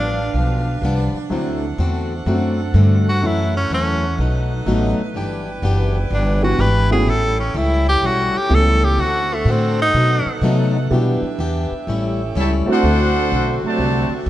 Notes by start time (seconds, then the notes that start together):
Already playing: A1 G2 F3 B3 D4 G4 B4 F5
0.34 B1 G2 F3 B3 D4
0.82 C2 G2 F3 B3 D4
1.14 muted upright bass stroke
1.30 D2 D3 F#3 A3 C4 D4 E4 A4 C5 F#5
1.34 F#4
1.78 E2 D3 A3 C4 F#4
2.25 F#2 D3 F#3 A3 C4 D4 F#4
2.74 G2 D3 A3 C4 F#4
3.09 F#4
3.22 F#2 E3 F#3 A3 C#4 E4 F#4 C#5
3.26 E4
3.57 C#4
3.70 E2 F#2 E3 A3 C#4
4.18 B1 B2 F#3 A3 D#4 A4 B4
4.66 A1 B2 F#3 A3 B3 D#4 F#4
4.99 muted upright bass stroke
5.14 G1 E3 B3 D4 E4 G4 D5 G5
5.62 F#1 E3 B3 D4 G4
6.10 G1 E3 B3 D4 G4
6.42 E3 G3 B3 D4 F#4
6.59 G#1 E3 B3 D4 G4 B4
6.91 E3 A3 B3 C#4 F#4 G#4
7.06 A1 A2 G3 C#4 E4 A4 C#5
7.40 C#4
7.54 C#2 A2 G3 C#4 E4
7.89 G4
8.01 B1 A2 G3 C#4 E4
8.06 F#4
8.34 G4, muted upright bass stroke
8.49 C#2 A2 E3 G3 A3 B3 C#4 E4 G4
8.54 A4
8.84 G4
8.98 D2 D3 A3 C4 D4 F#4 C5 F#5
9.34 A3
9.45 A2 D3 A3 C4 F#4
9.51 C4
9.82 D#4
9.94 B2 F#3 A3 D#4 B4
10.26 muted upright bass stroke
10.41 B2 C3 F#3 A3 B3 D#4 F#4
10.90 B2 E3 G3 B3 D4 E4 F#4 G4 E5
11.22 muted upright bass stroke
11.39 E2 E3 B3 D4 G4
11.72 muted upright bass stroke
11.87 A1 A2 G3 C#4 E4 A4
12.34 C#2 A2 G3 C#4 E4 G4 A4 E5
12.66 A3 C4 D4 E4 F#4, muted upright bass stroke
12.71 D4 A4 C5 F#5
12.83 D2 D3 A3 C4 F#4
12.88 F#4
13.31 B1 D3 A3 C4 F#4
13.63 C3 F#3 A3 F#4 C5 D5 A5, muted upright bass stroke
13.78 C2 D3 A3 C4
13.82 F#4
14.09 muted upright bass stroke
14.26 D2